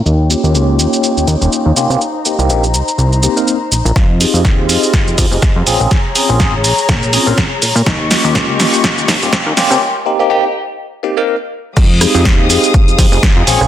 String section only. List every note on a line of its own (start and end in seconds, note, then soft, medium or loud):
0.06 3.92 D#4 medium
0.06 1.99 C#5 medium
0.06 1.99 G5 medium
2.01 3.94 C5 medium
2.01 3.94 A#5 medium
3.96 5.65 F4 medium
3.96 5.65 D#5 medium
5.67 7.84 G#4 medium
5.67 7.84 C#5 medium
5.67 7.84 A#5 medium
7.87 9.80 G4 medium
7.87 9.80 D#5 medium
7.87 9.80 C#6 medium
11.77 13.46 G#3 medium
11.77 13.46 F5 medium
11.77 13.46 D#6 medium
13.47 13.68 A#4 medium
13.47 13.68 G#5 medium
13.47 13.68 C#6 medium